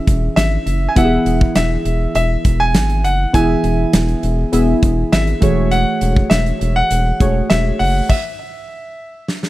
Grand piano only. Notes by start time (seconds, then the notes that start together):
Already playing: E5
0.36 E5
0.89 G#5
0.97 F#5
1.56 E5
2.15 E5
2.60 G#5
3.04 F#5
3.34 G#5
5.12 E5
5.71 F#5
6.30 E5
6.76 F#5
7.50 E5
7.79 F#5
8.09 E5